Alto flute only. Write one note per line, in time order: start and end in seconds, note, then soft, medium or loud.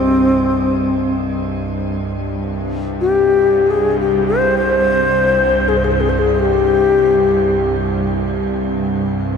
0.00 1.18 C4 medium
3.01 3.72 G4 medium
3.70 3.99 G#4 medium
4.00 4.24 G4 medium
4.26 4.55 C5 medium
4.58 5.70 C5 medium
5.68 5.79 G#4 medium
5.77 5.86 C5 medium
5.84 5.93 G#4 medium
5.91 6.02 C5 medium
6.01 6.11 G#4 medium
6.09 6.20 C5 medium
6.19 6.41 G#4 medium
6.40 7.84 G4 medium